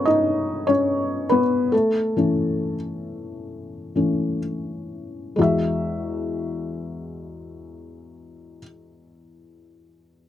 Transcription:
Already playing: E3 G#3 A3 B3 C#4 G#4 A4 B4 C#5
0.05 D#4 D#5
0.67 C#4 C#5
1.29 B3 B4
1.72 A3 A4
2.17 E3 A3 C#4
3.96 E3 A3 C#4
5.36 E2 G#3 F#4
5.42 E5

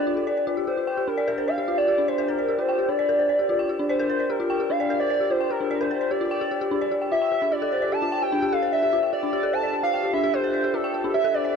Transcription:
Already playing: D4 F4 G4 A4 C5 D5 G5
0.07 F4
0.17 A4
0.27 D5
0.37 D5
0.47 F4
0.57 G4
0.67 G4 C5
0.77 F4
0.87 G5
0.97 G4
1.07 D4 A#4
1.18 D5
1.28 A#4
1.38 C5
1.48 D5 F5
1.58 G4
1.68 F4
1.78 D5 G5
1.88 G4
1.98 D4
2.08 C5 D5
2.18 A#4
2.28 A#4 C5
2.38 D5
2.48 G4
2.58 F4 C5
2.69 G5
2.79 G4
2.88 D4 D5
2.99 D5
3.09 A#4
3.19 C5
3.29 D5
3.39 G4
3.49 F4
3.59 G5
3.69 G4
3.79 D4
3.89 C5 D5
3.99 A#4
4.10 C5
4.20 D5
4.30 G4 A#4
4.40 F4
4.50 G5
4.60 G4
4.70 D4 F5
4.80 D5
4.90 A#4
5.00 C5 D5
5.10 D5
5.20 G4
5.30 F4 C5
5.40 G5
5.50 G4 A#4
5.61 D4
5.71 D5
5.80 A#4 C5
5.91 C5
6.01 D5
6.11 G4 D5
6.21 F4
6.31 G5
6.41 G4
6.51 G4
6.61 G4
6.71 D4
6.81 D5
6.91 G4
7.01 G5
7.11 F4 E5
7.22 G5
7.32 G4
7.42 D4
7.52 G4 D5
7.62 A4
7.72 C5
7.82 D5
7.92 G4 A5
8.02 F4
8.12 G5
8.22 G4 G5
8.32 D4
8.42 G4
8.52 A4 F5
8.63 C5
8.73 D5 E5
8.83 G4
8.93 F4
9.03 G5
9.13 G4 D5
9.23 D4
9.33 G4
9.43 A4
9.53 C5 A5
9.63 D5
9.73 G4
9.83 F4 F5
9.93 G5
10.03 G4
10.13 D4 E5
10.24 G4
10.34 A4 C5
10.44 C5
10.54 D5
10.64 G4
10.74 F4 A4
10.84 G5
10.94 G4
11.04 D4
11.14 G4 E5
11.24 A4
11.34 C5 D5
11.44 D5

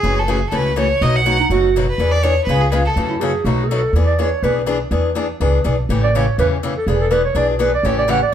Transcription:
Already playing: G#4
0.03 F#1 C#3 E3 A3 C#4 F#4
0.19 A4
0.28 C#3 E3 A3 C#4 F#4 G#4
0.49 C#2 C#3 E3 A3 C#4 F#4 A4
0.55 B4
0.76 C#3 E3 A3 C#4 F#4 C#5
1.01 B1 B2 F#3 A3 D#4 F#4 D#5
1.16 F#5
1.26 B2 F#3 A3 D#4 F#4
1.40 D#4
1.50 F#1 B2 F#3 A3 D#4 F#4
1.76 B2 F#3 A3 D#4 F#4
1.90 B4
1.98 E2 E3 B3 D4 G#4
2.12 D5
2.23 E3 B3 D4 G#4 C#5
2.45 C#2 B4
2.49 C#3 G#3 B3 F4 G#4
2.61 G#4
2.71 C#3 G#3 B3 F4 G#4 B4
2.85 A4
2.96 F#2 C#3 E3 A3 C#4 F#4
3.09 E4
3.20 C#3 E3 A3 C#4 F#4 G#4
3.44 B1 B2 F#3 A3 D#4 F#4
3.63 G#4
3.69 B2 F#3 A3 D#4 F#4 A4
3.93 E2 E3 B3 D4 G#4
4.06 D5
4.19 E3 B3 D4 G#4 C#5
4.43 B1 E3 B3 D4 G#4 B4
4.66 E3 B3 D4 G#4
4.91 E2 E3 B3 D4 G#4
5.15 E3 B3 D4 G#4
5.40 C#2 E3 B3 D4 G#4
5.64 B1 E3 B3 D4 G#4
5.89 A1 C#3 E3 A3 C#4 G4
6.03 D5
6.15 C#3 E3 A3 C#4 G4 C#5
6.38 E2 C#3 E3 A3 C#4 G4 B4
6.63 C#3 E3 A3 C#4 G4
6.77 A4
6.87 E1 E3 B3 D4 G#4
7.01 A4
7.11 E3 B3 D4 G#4 B4
7.25 C#5
7.35 B1 E3 B3 D4 G#4 D5
7.49 F#4
7.59 E3 B3 D4 G#4 B4
7.74 D5
7.83 A1 C#3 E3 A3 C#4 G4 C#5
7.98 D5
8.08 C#3 E3 A3 C#4 G4 F#5
8.22 D5

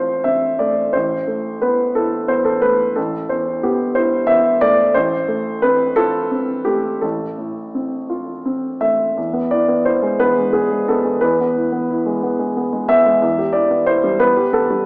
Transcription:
Already playing: A1 A2 A3 C4 F4 C5
0.24 C4 E5
0.59 A3 D5
0.93 A1 C5
1.27 A3
1.62 B3 B4
1.95 E4 A4
2.28 B3 C5
2.45 A4
2.62 A3 B4
2.96 A1 A4
3.29 E2 C5
3.63 B3 G4
3.95 E4 C5
4.27 B3 E5
4.61 A3 D5
4.94 A1 C5
5.28 A3
5.62 C4 B4
5.96 F4 A4
6.31 C4
6.65 A3 G4
7.01 A1 A4
7.38 A2
7.75 C4
8.10 F4
8.45 C4
8.81 A3 E5
9.17 E2
9.33 B3
9.51 E4 D5
9.68 B3
9.85 E4 C5
10.02 G#3
10.20 B3 B4
10.38 G#3
10.53 B3 G#4
10.71 G#3
10.88 B3 A4
11.04 G#3
11.21 E2 B4
11.40 B3
11.56 E4
11.72 B3
11.90 E4
12.06 G#3
12.23 B3
12.39 G#3
12.57 B3
12.73 G#3
12.89 B3 E5
13.06 G#3
13.22 E2
13.39 G4
13.53 E4 D5
13.70 B3
13.86 E4 C5
14.04 G3
14.20 B3 B4
14.37 G4
14.53 B3 A4
14.70 G3

